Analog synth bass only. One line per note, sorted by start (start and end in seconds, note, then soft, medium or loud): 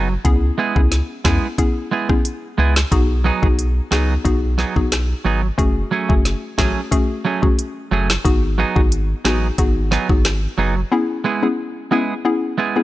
0.00 0.17 F#1 medium
0.25 0.51 C#2 loud
0.76 1.02 C#2 medium
1.25 1.39 E2 loud
2.59 2.84 C#2 medium
2.92 3.31 B1 loud
3.43 3.81 B1 loud
3.92 4.17 C#2 loud
4.25 4.64 B1 loud
4.76 5.14 B1 medium
5.25 5.51 G#1 medium
5.59 5.84 F#1 loud
6.10 6.35 F#1 medium
6.59 6.72 A1 medium
7.92 8.17 F#1 medium
8.25 8.64 G#1 loud
8.76 9.14 G#1 loud
9.25 9.51 A1 loud
9.59 9.98 G#1 loud
10.10 10.47 G#1 medium
10.58 10.84 F#1 medium